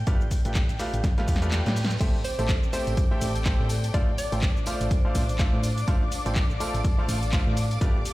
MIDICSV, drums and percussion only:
0, 0, Header, 1, 2, 480
1, 0, Start_track
1, 0, Tempo, 483871
1, 69, Time_signature, 4, 2, 24, 8
1, 8065, End_track
2, 0, Start_track
2, 0, Title_t, "Drums"
2, 68, Note_on_c, 9, 42, 87
2, 68, Note_on_c, 9, 69, 48
2, 69, Note_on_c, 9, 36, 107
2, 167, Note_off_c, 9, 42, 0
2, 168, Note_off_c, 9, 36, 0
2, 168, Note_off_c, 9, 69, 0
2, 208, Note_on_c, 9, 69, 34
2, 308, Note_off_c, 9, 69, 0
2, 308, Note_on_c, 9, 46, 103
2, 308, Note_on_c, 9, 69, 82
2, 309, Note_on_c, 9, 36, 61
2, 407, Note_off_c, 9, 46, 0
2, 407, Note_off_c, 9, 69, 0
2, 408, Note_off_c, 9, 36, 0
2, 447, Note_on_c, 9, 42, 53
2, 448, Note_on_c, 9, 69, 34
2, 543, Note_on_c, 9, 39, 119
2, 546, Note_off_c, 9, 42, 0
2, 547, Note_off_c, 9, 69, 0
2, 548, Note_on_c, 9, 42, 82
2, 549, Note_on_c, 9, 36, 115
2, 549, Note_on_c, 9, 69, 47
2, 642, Note_off_c, 9, 39, 0
2, 647, Note_off_c, 9, 42, 0
2, 648, Note_off_c, 9, 36, 0
2, 648, Note_off_c, 9, 69, 0
2, 687, Note_on_c, 9, 42, 41
2, 687, Note_on_c, 9, 69, 34
2, 783, Note_on_c, 9, 39, 37
2, 786, Note_off_c, 9, 42, 0
2, 786, Note_off_c, 9, 69, 0
2, 788, Note_on_c, 9, 46, 97
2, 788, Note_on_c, 9, 69, 81
2, 882, Note_off_c, 9, 39, 0
2, 887, Note_off_c, 9, 46, 0
2, 887, Note_off_c, 9, 69, 0
2, 928, Note_on_c, 9, 42, 52
2, 929, Note_on_c, 9, 69, 35
2, 1028, Note_off_c, 9, 42, 0
2, 1028, Note_off_c, 9, 69, 0
2, 1029, Note_on_c, 9, 36, 121
2, 1029, Note_on_c, 9, 38, 71
2, 1029, Note_on_c, 9, 42, 87
2, 1030, Note_on_c, 9, 69, 51
2, 1128, Note_off_c, 9, 36, 0
2, 1128, Note_off_c, 9, 38, 0
2, 1128, Note_off_c, 9, 42, 0
2, 1129, Note_off_c, 9, 69, 0
2, 1168, Note_on_c, 9, 42, 40
2, 1189, Note_on_c, 9, 38, 78
2, 1268, Note_off_c, 9, 42, 0
2, 1268, Note_on_c, 9, 46, 101
2, 1269, Note_on_c, 9, 36, 57
2, 1269, Note_on_c, 9, 69, 87
2, 1288, Note_off_c, 9, 38, 0
2, 1348, Note_on_c, 9, 38, 85
2, 1368, Note_off_c, 9, 36, 0
2, 1368, Note_off_c, 9, 46, 0
2, 1368, Note_off_c, 9, 69, 0
2, 1409, Note_on_c, 9, 42, 55
2, 1409, Note_on_c, 9, 69, 36
2, 1447, Note_off_c, 9, 38, 0
2, 1504, Note_on_c, 9, 39, 120
2, 1508, Note_off_c, 9, 42, 0
2, 1508, Note_off_c, 9, 69, 0
2, 1508, Note_on_c, 9, 38, 86
2, 1508, Note_on_c, 9, 42, 82
2, 1509, Note_on_c, 9, 69, 46
2, 1603, Note_off_c, 9, 39, 0
2, 1608, Note_off_c, 9, 38, 0
2, 1608, Note_off_c, 9, 42, 0
2, 1608, Note_off_c, 9, 69, 0
2, 1649, Note_on_c, 9, 42, 38
2, 1649, Note_on_c, 9, 69, 31
2, 1668, Note_on_c, 9, 38, 90
2, 1748, Note_off_c, 9, 42, 0
2, 1748, Note_off_c, 9, 69, 0
2, 1749, Note_on_c, 9, 46, 109
2, 1750, Note_on_c, 9, 69, 88
2, 1768, Note_off_c, 9, 38, 0
2, 1830, Note_on_c, 9, 38, 112
2, 1848, Note_off_c, 9, 46, 0
2, 1849, Note_off_c, 9, 69, 0
2, 1890, Note_on_c, 9, 42, 56
2, 1891, Note_on_c, 9, 69, 35
2, 1929, Note_off_c, 9, 38, 0
2, 1989, Note_on_c, 9, 36, 109
2, 1990, Note_off_c, 9, 42, 0
2, 1990, Note_off_c, 9, 69, 0
2, 1990, Note_on_c, 9, 42, 82
2, 1990, Note_on_c, 9, 49, 81
2, 1991, Note_on_c, 9, 69, 44
2, 1993, Note_on_c, 9, 54, 41
2, 2088, Note_off_c, 9, 36, 0
2, 2090, Note_off_c, 9, 42, 0
2, 2090, Note_off_c, 9, 49, 0
2, 2090, Note_off_c, 9, 69, 0
2, 2093, Note_off_c, 9, 54, 0
2, 2225, Note_on_c, 9, 54, 85
2, 2230, Note_on_c, 9, 46, 105
2, 2231, Note_on_c, 9, 69, 77
2, 2324, Note_off_c, 9, 54, 0
2, 2329, Note_off_c, 9, 46, 0
2, 2330, Note_off_c, 9, 69, 0
2, 2369, Note_on_c, 9, 54, 56
2, 2370, Note_on_c, 9, 42, 52
2, 2370, Note_on_c, 9, 69, 31
2, 2465, Note_on_c, 9, 39, 127
2, 2468, Note_off_c, 9, 54, 0
2, 2468, Note_on_c, 9, 54, 38
2, 2469, Note_off_c, 9, 42, 0
2, 2469, Note_off_c, 9, 69, 0
2, 2469, Note_on_c, 9, 36, 120
2, 2470, Note_on_c, 9, 42, 84
2, 2470, Note_on_c, 9, 69, 49
2, 2564, Note_off_c, 9, 39, 0
2, 2567, Note_off_c, 9, 54, 0
2, 2569, Note_off_c, 9, 36, 0
2, 2569, Note_off_c, 9, 42, 0
2, 2570, Note_off_c, 9, 69, 0
2, 2609, Note_on_c, 9, 69, 33
2, 2708, Note_on_c, 9, 46, 101
2, 2709, Note_off_c, 9, 69, 0
2, 2709, Note_on_c, 9, 69, 78
2, 2714, Note_on_c, 9, 54, 97
2, 2807, Note_off_c, 9, 46, 0
2, 2808, Note_off_c, 9, 69, 0
2, 2813, Note_off_c, 9, 54, 0
2, 2848, Note_on_c, 9, 42, 53
2, 2848, Note_on_c, 9, 69, 33
2, 2853, Note_on_c, 9, 54, 60
2, 2947, Note_off_c, 9, 42, 0
2, 2948, Note_off_c, 9, 69, 0
2, 2948, Note_on_c, 9, 42, 87
2, 2949, Note_off_c, 9, 54, 0
2, 2949, Note_on_c, 9, 54, 47
2, 2949, Note_on_c, 9, 69, 50
2, 2950, Note_on_c, 9, 36, 120
2, 3047, Note_off_c, 9, 42, 0
2, 3048, Note_off_c, 9, 54, 0
2, 3048, Note_off_c, 9, 69, 0
2, 3049, Note_off_c, 9, 36, 0
2, 3187, Note_on_c, 9, 54, 88
2, 3188, Note_on_c, 9, 46, 108
2, 3189, Note_on_c, 9, 69, 85
2, 3286, Note_off_c, 9, 54, 0
2, 3287, Note_off_c, 9, 46, 0
2, 3288, Note_off_c, 9, 69, 0
2, 3328, Note_on_c, 9, 42, 54
2, 3329, Note_on_c, 9, 69, 35
2, 3331, Note_on_c, 9, 54, 57
2, 3424, Note_on_c, 9, 39, 127
2, 3427, Note_off_c, 9, 42, 0
2, 3428, Note_off_c, 9, 69, 0
2, 3428, Note_on_c, 9, 42, 82
2, 3429, Note_on_c, 9, 69, 46
2, 3430, Note_off_c, 9, 54, 0
2, 3430, Note_on_c, 9, 36, 127
2, 3523, Note_off_c, 9, 39, 0
2, 3528, Note_off_c, 9, 42, 0
2, 3528, Note_off_c, 9, 69, 0
2, 3529, Note_off_c, 9, 36, 0
2, 3662, Note_on_c, 9, 54, 92
2, 3668, Note_on_c, 9, 46, 108
2, 3669, Note_on_c, 9, 69, 83
2, 3761, Note_off_c, 9, 54, 0
2, 3767, Note_off_c, 9, 46, 0
2, 3768, Note_off_c, 9, 69, 0
2, 3806, Note_on_c, 9, 54, 55
2, 3809, Note_on_c, 9, 42, 59
2, 3810, Note_on_c, 9, 69, 36
2, 3905, Note_off_c, 9, 54, 0
2, 3909, Note_off_c, 9, 42, 0
2, 3909, Note_off_c, 9, 69, 0
2, 3909, Note_on_c, 9, 36, 116
2, 3909, Note_on_c, 9, 42, 82
2, 3910, Note_on_c, 9, 69, 44
2, 4008, Note_off_c, 9, 42, 0
2, 4009, Note_off_c, 9, 36, 0
2, 4009, Note_off_c, 9, 69, 0
2, 4148, Note_on_c, 9, 54, 97
2, 4149, Note_on_c, 9, 46, 109
2, 4149, Note_on_c, 9, 69, 79
2, 4247, Note_off_c, 9, 54, 0
2, 4248, Note_off_c, 9, 46, 0
2, 4249, Note_off_c, 9, 69, 0
2, 4287, Note_on_c, 9, 54, 54
2, 4289, Note_on_c, 9, 42, 52
2, 4290, Note_on_c, 9, 69, 31
2, 4385, Note_off_c, 9, 54, 0
2, 4385, Note_on_c, 9, 39, 127
2, 4385, Note_on_c, 9, 54, 43
2, 4388, Note_off_c, 9, 42, 0
2, 4389, Note_off_c, 9, 69, 0
2, 4389, Note_on_c, 9, 36, 127
2, 4390, Note_on_c, 9, 42, 81
2, 4390, Note_on_c, 9, 69, 44
2, 4484, Note_off_c, 9, 39, 0
2, 4484, Note_off_c, 9, 54, 0
2, 4489, Note_off_c, 9, 36, 0
2, 4489, Note_off_c, 9, 42, 0
2, 4489, Note_off_c, 9, 69, 0
2, 4531, Note_on_c, 9, 69, 33
2, 4622, Note_on_c, 9, 54, 98
2, 4629, Note_on_c, 9, 46, 109
2, 4630, Note_off_c, 9, 69, 0
2, 4630, Note_on_c, 9, 69, 78
2, 4721, Note_off_c, 9, 54, 0
2, 4728, Note_off_c, 9, 46, 0
2, 4729, Note_off_c, 9, 69, 0
2, 4770, Note_on_c, 9, 42, 55
2, 4770, Note_on_c, 9, 54, 62
2, 4771, Note_on_c, 9, 69, 33
2, 4868, Note_off_c, 9, 54, 0
2, 4868, Note_on_c, 9, 54, 44
2, 4869, Note_off_c, 9, 42, 0
2, 4870, Note_off_c, 9, 69, 0
2, 4870, Note_on_c, 9, 36, 127
2, 4870, Note_on_c, 9, 42, 83
2, 4871, Note_on_c, 9, 69, 47
2, 4967, Note_off_c, 9, 54, 0
2, 4969, Note_off_c, 9, 36, 0
2, 4969, Note_off_c, 9, 42, 0
2, 4970, Note_off_c, 9, 69, 0
2, 5106, Note_on_c, 9, 54, 107
2, 5109, Note_on_c, 9, 46, 107
2, 5110, Note_on_c, 9, 36, 65
2, 5110, Note_on_c, 9, 69, 79
2, 5205, Note_off_c, 9, 54, 0
2, 5208, Note_off_c, 9, 46, 0
2, 5209, Note_off_c, 9, 36, 0
2, 5209, Note_off_c, 9, 69, 0
2, 5250, Note_on_c, 9, 42, 52
2, 5251, Note_on_c, 9, 69, 34
2, 5253, Note_on_c, 9, 54, 50
2, 5345, Note_on_c, 9, 39, 122
2, 5349, Note_off_c, 9, 42, 0
2, 5350, Note_off_c, 9, 69, 0
2, 5350, Note_on_c, 9, 36, 127
2, 5350, Note_on_c, 9, 42, 80
2, 5351, Note_off_c, 9, 54, 0
2, 5351, Note_on_c, 9, 54, 39
2, 5351, Note_on_c, 9, 69, 44
2, 5444, Note_off_c, 9, 39, 0
2, 5449, Note_off_c, 9, 36, 0
2, 5449, Note_off_c, 9, 42, 0
2, 5450, Note_off_c, 9, 54, 0
2, 5450, Note_off_c, 9, 69, 0
2, 5587, Note_on_c, 9, 54, 96
2, 5590, Note_on_c, 9, 46, 119
2, 5591, Note_on_c, 9, 69, 82
2, 5686, Note_off_c, 9, 54, 0
2, 5689, Note_off_c, 9, 46, 0
2, 5690, Note_off_c, 9, 69, 0
2, 5730, Note_on_c, 9, 42, 53
2, 5731, Note_on_c, 9, 69, 34
2, 5736, Note_on_c, 9, 54, 54
2, 5829, Note_off_c, 9, 42, 0
2, 5830, Note_off_c, 9, 69, 0
2, 5830, Note_on_c, 9, 36, 118
2, 5830, Note_on_c, 9, 42, 78
2, 5830, Note_on_c, 9, 69, 43
2, 5832, Note_off_c, 9, 54, 0
2, 5832, Note_on_c, 9, 54, 41
2, 5929, Note_off_c, 9, 36, 0
2, 5929, Note_off_c, 9, 42, 0
2, 5929, Note_off_c, 9, 69, 0
2, 5931, Note_off_c, 9, 54, 0
2, 6069, Note_on_c, 9, 46, 112
2, 6069, Note_on_c, 9, 69, 81
2, 6075, Note_on_c, 9, 54, 98
2, 6168, Note_off_c, 9, 46, 0
2, 6168, Note_off_c, 9, 69, 0
2, 6174, Note_off_c, 9, 54, 0
2, 6209, Note_on_c, 9, 42, 51
2, 6209, Note_on_c, 9, 69, 32
2, 6211, Note_on_c, 9, 54, 60
2, 6305, Note_on_c, 9, 39, 125
2, 6308, Note_off_c, 9, 42, 0
2, 6308, Note_off_c, 9, 69, 0
2, 6310, Note_on_c, 9, 36, 124
2, 6310, Note_on_c, 9, 42, 78
2, 6310, Note_on_c, 9, 69, 43
2, 6311, Note_off_c, 9, 54, 0
2, 6404, Note_off_c, 9, 39, 0
2, 6409, Note_off_c, 9, 36, 0
2, 6409, Note_off_c, 9, 42, 0
2, 6410, Note_off_c, 9, 69, 0
2, 6451, Note_on_c, 9, 69, 31
2, 6550, Note_off_c, 9, 69, 0
2, 6551, Note_on_c, 9, 46, 114
2, 6551, Note_on_c, 9, 69, 77
2, 6557, Note_on_c, 9, 54, 108
2, 6650, Note_off_c, 9, 46, 0
2, 6650, Note_off_c, 9, 69, 0
2, 6656, Note_off_c, 9, 54, 0
2, 6691, Note_on_c, 9, 42, 50
2, 6691, Note_on_c, 9, 69, 31
2, 6696, Note_on_c, 9, 54, 52
2, 6788, Note_off_c, 9, 54, 0
2, 6788, Note_on_c, 9, 54, 42
2, 6790, Note_off_c, 9, 42, 0
2, 6790, Note_off_c, 9, 69, 0
2, 6790, Note_on_c, 9, 36, 127
2, 6791, Note_on_c, 9, 42, 81
2, 6791, Note_on_c, 9, 69, 47
2, 6887, Note_off_c, 9, 54, 0
2, 6889, Note_off_c, 9, 36, 0
2, 6890, Note_off_c, 9, 42, 0
2, 6890, Note_off_c, 9, 69, 0
2, 7030, Note_on_c, 9, 46, 118
2, 7030, Note_on_c, 9, 54, 105
2, 7030, Note_on_c, 9, 69, 75
2, 7129, Note_off_c, 9, 46, 0
2, 7129, Note_off_c, 9, 54, 0
2, 7130, Note_off_c, 9, 69, 0
2, 7169, Note_on_c, 9, 42, 51
2, 7170, Note_on_c, 9, 54, 56
2, 7170, Note_on_c, 9, 69, 31
2, 7265, Note_on_c, 9, 39, 122
2, 7266, Note_off_c, 9, 54, 0
2, 7266, Note_on_c, 9, 54, 45
2, 7269, Note_off_c, 9, 42, 0
2, 7269, Note_off_c, 9, 69, 0
2, 7269, Note_on_c, 9, 42, 79
2, 7270, Note_on_c, 9, 36, 127
2, 7270, Note_on_c, 9, 69, 42
2, 7364, Note_off_c, 9, 39, 0
2, 7365, Note_off_c, 9, 54, 0
2, 7369, Note_off_c, 9, 36, 0
2, 7369, Note_off_c, 9, 42, 0
2, 7369, Note_off_c, 9, 69, 0
2, 7509, Note_on_c, 9, 46, 115
2, 7509, Note_on_c, 9, 69, 81
2, 7511, Note_on_c, 9, 54, 86
2, 7608, Note_off_c, 9, 46, 0
2, 7609, Note_off_c, 9, 69, 0
2, 7611, Note_off_c, 9, 54, 0
2, 7649, Note_on_c, 9, 42, 51
2, 7650, Note_on_c, 9, 69, 33
2, 7652, Note_on_c, 9, 54, 56
2, 7748, Note_off_c, 9, 42, 0
2, 7749, Note_off_c, 9, 69, 0
2, 7750, Note_on_c, 9, 36, 111
2, 7751, Note_off_c, 9, 54, 0
2, 7751, Note_on_c, 9, 42, 77
2, 7751, Note_on_c, 9, 69, 43
2, 7849, Note_off_c, 9, 36, 0
2, 7850, Note_off_c, 9, 42, 0
2, 7850, Note_off_c, 9, 69, 0
2, 7988, Note_on_c, 9, 54, 91
2, 7990, Note_on_c, 9, 46, 110
2, 7991, Note_on_c, 9, 69, 77
2, 8065, Note_off_c, 9, 46, 0
2, 8065, Note_off_c, 9, 54, 0
2, 8065, Note_off_c, 9, 69, 0
2, 8065, End_track
0, 0, End_of_file